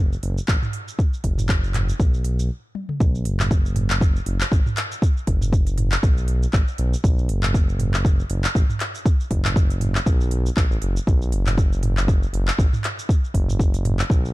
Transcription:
Already playing: analog synth bass F#1
0.13 shaker
0.23 analog synth bass F#1, open hi-hat
0.38 shaker
0.48 analog synth bass A1, kick, clap, shaker
0.62 mid tom, shaker
0.73 open hi-hat
0.88 shaker
0.99 kick, shaker
1.14 shaker
1.24 analog synth bass F#1, kick, open hi-hat
1.38 mid tom, shaker
1.49 kick, clap, shaker
1.64 shaker
1.74 clap, mid tom, open hi-hat
1.89 shaker
2.00 analog synth bass B1, kick, shaker
2.14 shaker
2.24 open hi-hat
2.39 shaker
2.75 high tom
2.89 mid tom
3.00 analog synth bass B1, kick, shaker
3.15 shaker
3.25 analog synth bass F#1, open hi-hat
3.40 clap, mid tom, shaker
3.51 kick, shaker
3.66 shaker
3.76 mid tom, open hi-hat
3.90 clap, shaker
4.01 kick, shaker
4.16 shaker
4.26 analog synth bass F#1, open hi-hat
4.41 clap, shaker
4.52 analog synth bass A1, kick, shaker
4.66 mid tom, shaker
4.77 clap, open hi-hat
4.92 shaker
5.02 kick, shaker
5.17 shaker
5.27 analog synth bass F#1, kick, open hi-hat
5.41 mid tom, shaker
5.53 kick, shaker
5.67 open hi-hat, shaker
5.78 mid tom, open hi-hat
5.92 clap, shaker
6.03 analog synth bass B1, kick, shaker
6.18 shaker
6.28 open hi-hat
6.43 shaker
6.53 analog synth bass A1, kick, clap, shaker
6.68 shaker
6.78 analog synth bass B1, open hi-hat
6.94 shaker
7.04 analog synth bass B1, kick, shaker
7.19 shaker
7.29 analog synth bass F#1, open hi-hat
7.43 clap, mid tom, shaker
7.54 kick, shaker
7.69 shaker
7.80 mid tom, open hi-hat
7.94 clap, shaker
8.05 kick, shaker
8.20 shaker
8.30 analog synth bass F#1, open hi-hat
8.44 clap, shaker
8.55 analog synth bass A1, kick, shaker
8.69 mid tom, shaker
8.80 clap, open hi-hat
8.95 shaker
9.06 kick, shaker
9.20 shaker
9.31 analog synth bass F#1, kick, open hi-hat
9.45 clap, mid tom, shaker
9.56 kick, shaker
9.70 open hi-hat, shaker
9.81 mid tom, open hi-hat
9.95 clap, shaker
10.06 analog synth bass B1, kick, shaker
10.21 shaker
10.31 open hi-hat
10.46 shaker
10.57 analog synth bass B1, kick, clap, shaker
10.71 analog synth bass A1, shaker
10.82 analog synth bass F#1, open hi-hat
10.97 shaker
11.07 analog synth bass B1, kick, shaker
11.22 shaker
11.32 analog synth bass F#1, open hi-hat
11.47 clap, mid tom, shaker
11.58 kick, shaker
11.73 shaker
11.83 mid tom, open hi-hat
11.97 clap, shaker
12.08 kick, shaker
12.23 shaker
12.33 analog synth bass F#1, open hi-hat
12.48 clap, shaker
12.59 analog synth bass A1, kick, shaker
12.73 mid tom, shaker
12.84 clap, open hi-hat
12.99 shaker
13.09 kick, shaker
13.24 shaker
13.34 analog synth bass F#1, kick, open hi-hat
13.49 mid tom, shaker
13.60 kick, shaker
13.74 open hi-hat, shaker
13.85 mid tom, open hi-hat
13.99 clap, shaker
14.10 analog synth bass B1, kick, shaker
14.25 shaker

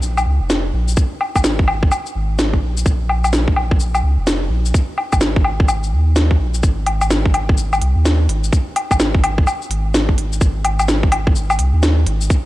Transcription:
Already playing: sub bass A#1
0.02 shaker
0.17 low woodblock, shaker
0.26 sub bass C#2
0.40 sub bass F1
0.50 snare, shaker
0.73 sub bass A#1
0.88 shaker
0.97 kick, shaker
1.21 low woodblock
1.35 sub bass G#1, kick, low woodblock, shaker
1.44 snare, shaker
1.59 kick
1.68 low woodblock
1.83 kick
1.92 low woodblock, shaker
2.06 shaker
2.15 sub bass G#1
2.39 snare, shaker
2.54 kick
2.62 sub bass A#1
2.77 shaker
2.86 sub bass A#1, kick, shaker
3.09 low woodblock
3.24 low woodblock, shaker
3.33 snare, shaker
3.48 kick
3.56 low woodblock
3.71 kick
3.80 shaker
3.94 low woodblock, shaker
4.03 sub bass C#2
4.17 sub bass F1
4.27 snare, shaker
4.49 sub bass A#1
4.65 shaker
4.74 kick, shaker
4.98 low woodblock
5.12 sub bass G#1, kick, low woodblock, shaker
5.21 snare, shaker
5.36 kick
5.44 low woodblock
5.60 kick
5.68 low woodblock, shaker
5.83 shaker
5.92 sub bass D#2
6.16 snare, shaker
6.31 kick
6.40 sub bass A#1
6.54 shaker
6.63 sub bass G#1, kick, shaker
6.87 open hi-hat, low woodblock
7.01 low woodblock, shaker
7.11 snare, shaker
7.26 kick
7.34 open hi-hat, low woodblock
7.49 kick
7.58 shaker
7.73 low woodblock, shaker
7.81 sub bass C2, open hi-hat
7.96 sub bass D#2
8.05 snare, shaker
8.28 sub bass G#1, open hi-hat
8.44 shaker
8.53 kick, shaker
8.76 open hi-hat, low woodblock
8.91 sub bass G#1, kick, low woodblock, shaker
9.00 snare, shaker
9.15 kick
9.24 open hi-hat, low woodblock
9.38 kick
9.47 low woodblock, shaker
9.62 shaker
9.70 sub bass G#1, open hi-hat
9.94 snare, shaker
10.09 kick
10.18 sub bass G#1, open hi-hat
10.33 shaker
10.41 sub bass G#1, kick, shaker
10.65 open hi-hat, low woodblock
10.80 low woodblock, shaker
10.88 snare, shaker
11.03 kick
11.12 open hi-hat, low woodblock
11.27 kick
11.36 shaker
11.50 low woodblock, shaker
11.59 sub bass C2, open hi-hat
11.74 sub bass D#2
11.83 snare, shaker
12.06 sub bass G#1, open hi-hat
12.21 shaker
12.30 kick, shaker

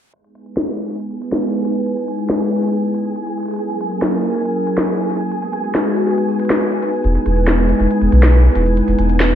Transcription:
0.14 analog synth pad G#3 B3 D#4 E4 B4, synth texture G#4 G#5, closed hi-hat
0.24 closed hi-hat
0.35 closed hi-hat
0.46 closed hi-hat
0.57 snare
0.68 closed hi-hat
0.78 closed hi-hat
0.89 closed hi-hat
1.00 closed hi-hat
1.11 closed hi-hat
1.22 closed hi-hat
1.32 snare
1.43 closed hi-hat
1.46 closed hi-hat
1.49 closed hi-hat
1.51 closed hi-hat
1.65 closed hi-hat
1.76 closed hi-hat
1.86 closed hi-hat
1.97 closed hi-hat
2.08 closed hi-hat
2.19 closed hi-hat
2.30 snare, closed hi-hat
2.51 closed hi-hat
2.57 closed hi-hat
2.62 closed hi-hat
2.67 closed hi-hat
2.73 closed hi-hat
2.94 closed hi-hat
3.05 closed hi-hat
3.16 closed hi-hat
3.27 closed hi-hat
3.37 closed hi-hat
3.40 closed hi-hat
3.43 closed hi-hat
3.46 closed hi-hat
3.48 closed hi-hat
3.51 closed hi-hat
3.54 closed hi-hat
3.56 analog synth pad F#3 C#4, closed hi-hat
3.59 analog synth pad A#3 A#4, closed hi-hat
3.70 closed hi-hat
3.81 closed hi-hat
3.91 closed hi-hat
4.02 snare, closed hi-hat
4.13 closed hi-hat
4.17 closed hi-hat
4.20 closed hi-hat
4.24 closed hi-hat
4.27 closed hi-hat
4.31 closed hi-hat
4.35 closed hi-hat
4.45 closed hi-hat
4.67 closed hi-hat
4.78 snare
4.88 closed hi-hat
5.10 closed hi-hat
5.21 closed hi-hat
5.32 analog synth pad G#3 B3 D#4 F#4 B4, closed hi-hat
5.42 closed hi-hat
5.53 closed hi-hat
5.64 closed hi-hat
5.75 snare, closed hi-hat
5.86 closed hi-hat
5.96 closed hi-hat
6.07 closed hi-hat
6.18 closed hi-hat
6.29 closed hi-hat
6.31 closed hi-hat
6.34 closed hi-hat
6.37 closed hi-hat
6.39 closed hi-hat
6.42 closed hi-hat
6.45 closed hi-hat
6.48 snare, closed hi-hat
6.50 closed hi-hat
6.56 closed hi-hat
6.61 closed hi-hat
6.72 closed hi-hat
6.83 closed hi-hat
6.93 closed hi-hat
6.96 closed hi-hat
6.99 closed hi-hat
7.02 closed hi-hat
7.04 sub bass E1, analog synth pad E4, closed hi-hat
7.15 closed hi-hat
7.26 sub bass E1, closed hi-hat
7.37 closed hi-hat
7.48 snare, closed hi-hat
7.58 closed hi-hat
7.69 closed hi-hat
7.80 sub bass E1, closed hi-hat
7.91 closed hi-hat
8.02 sub bass E1, closed hi-hat
8.12 sub bass B1, closed hi-hat
8.23 snare, closed hi-hat
8.34 closed hi-hat
8.45 closed hi-hat
8.55 sub bass E1, closed hi-hat
8.66 closed hi-hat
8.77 closed hi-hat
8.88 sub bass E1, closed hi-hat
8.99 sub bass E1, closed hi-hat
9.09 closed hi-hat
9.20 snare, closed hi-hat
9.31 closed hi-hat

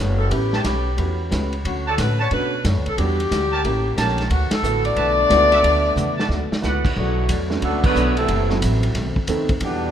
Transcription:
Already playing: hollow-body jazz guitar B3
0.00 upright bass F#1, hollow-body jazz guitar D4 A4 C#5
0.18 saxophone section A4
0.29 upright bass A1, hollow-body jazz guitar A3 C#4 G4, grand piano B3 C#4 E4 G4, saxophone section G4, kick, ride
0.34 hollow-body jazz guitar B4
0.53 trumpet section G4 B4 C#5 A5, snare
0.64 upright bass B1, hollow-body jazz guitar A3 C#4 G4 B4, kick, snare, hi-hat pedal, ride
0.96 upright bass E2, hollow-body jazz guitar A3 C#4 G4 B4, grand piano B3 C#4 E4 F#4, kick, ride
1.30 upright bass C#2, hollow-body jazz guitar A3 C#4 G4 B4, kick, snare, hi-hat pedal, ride
1.53 ride
1.63 upright bass D2, hollow-body jazz guitar D3 A3 C#4 F#4, saxophone section F#4, kick, ride
1.86 trumpet section F#4 C#5 D5 A5, saxophone section A4
1.97 upright bass A2, hollow-body jazz guitar D3 A3 C#4 F#4, saxophone section B4, kick, snare, hi-hat pedal, ride
2.19 trumpet section D4 B4 C#5 A5, saxophone section C#5
2.31 upright bass B2, grand piano A3 C#4 D4 F#4, hollow-body jazz guitar B3 D4 A4 C#5, saxophone section B4, kick, ride
2.64 upright bass F#2, hollow-body jazz guitar B3 D4 A4 C#5, kick, snare, hi-hat pedal, ride
2.76 upright bass D2
2.86 upright bass B1, saxophone section A4, ride
2.97 upright bass E2, hollow-body jazz guitar E3 G3 D4 F#4, grand piano G3 B3 D4 F#4, saxophone section G4, kick, ride
3.20 ride
3.31 upright bass D2, hollow-body jazz guitar E3 G3 D4 F#4, kick, snare, hi-hat pedal, ride
3.52 trumpet section G4 A#4 C#5 A5
3.63 upright bass A1, hollow-body jazz guitar A3 C#4 G4 A#4, grand piano A#3 C#4 E4 G4, kick, ride
3.96 upright bass A#1, hollow-body jazz guitar A3 C#4 G4 A#4, trumpet section G4 A#4 C#5 A5, kick, snare, hi-hat pedal, ride
4.08 snare
4.18 snare, ride
4.29 upright bass D2, hollow-body jazz guitar D3 A3 B3 F#4, saxophone section F#4, kick, ride
4.51 saxophone section A4, muted upright bass stroke, snare, ride
4.62 upright bass A1, hollow-body jazz guitar D3 A3 B3 F#4, grand piano A3 B3 E4 F#4, hi-hat pedal
4.84 trombone section A3 B3 D4, saxophone section D5, ride
4.96 upright bass B1, hollow-body jazz guitar D3 A3 B3 F#4, trumpet section F#4 B4 D5 A5, kick, ride
5.29 upright bass C#2, hollow-body jazz guitar D3 A3 B3 F#4, grand piano A3 B3 E4 F#4, kick, snare, hi-hat pedal, ride
5.51 trumpet section F#4 B4 D5 E5, snare, ride
5.62 upright bass D2, hollow-body jazz guitar D3 A3 B3 F#4, kick, ride
5.95 upright bass E2, hollow-body jazz guitar D3 A3 B3 F#4, hi-hat pedal, mid tom
6.17 trumpet section F#4 B4 D5 A5, snare
6.29 upright bass D2, hollow-body jazz guitar D3 A3 B3 F#4, snare
6.51 muted upright bass stroke, snare
6.62 upright bass C#2, hollow-body jazz guitar D3 A3 B3 F#4, grand piano A3 B3 E4 F#4, trumpet section F#4 B4 D5 F#5, snare, hi-hat pedal
6.85 kick, crash
6.95 upright bass B1, trombone section A2 D3 F#3, hollow-body jazz guitar B2 F#3 A3 D4, saxophone section D3 A3 B3 F#4, kick
7.29 upright bass E2, hollow-body jazz guitar B2 F#3 A3 D4, kick, hi-hat pedal, ride
7.50 grand piano A3 B3 C#4 D4 F#4, snare
7.61 upright bass D2, hollow-body jazz guitar B2 F#3 A3 D4, trombone section D3 F#3 A3, saxophone section F#3 B3 D4 A4, kick, ride
7.84 trombone section D3 F#3 B3, saxophone section A3 D4 F#4 B4, kick, crash
7.95 upright bass B1, hollow-body jazz guitar B2 F#3 A3 D4, hi-hat pedal
8.17 trombone section C3 E3 A3, saxophone section F#3 C4 E4 A4, ride
8.27 upright bass F#1, hollow-body jazz guitar F#2 E3 A3 C4, kick, ride
8.49 grand piano F#3 A3 C4 E4 F#4, snare
8.61 upright bass A1, hollow-body jazz guitar F#2 E3 A3 C4, kick, hi-hat pedal, ride
8.83 ride
8.94 upright bass B1, hollow-body jazz guitar B2 D#3 A3 C4, kick, snare, ride
9.16 muted upright bass stroke, kick
9.27 upright bass D#2, hollow-body jazz guitar B2 D#3 A3 C4, grand piano A3 B3 C4 D#4 A4, kick, hi-hat pedal, ride
9.49 kick, ride
9.60 upright bass E2, trombone section B2 G3 D4, hollow-body jazz guitar E3 B3 D4 G4, saxophone section E3 B3 D4 G4, kick, ride

